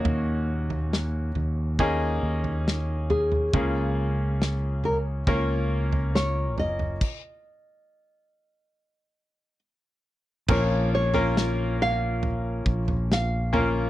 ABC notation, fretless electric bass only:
X:1
M:4/4
L:1/8
Q:1/4=69
K:Bbm
V:1 name="Fretless electric bass" clef=bass
E,,3 E,,2 E,,3 | D,,4 D,,3 G,,, | z8 | B,,,4- B,,, B,,,3 |]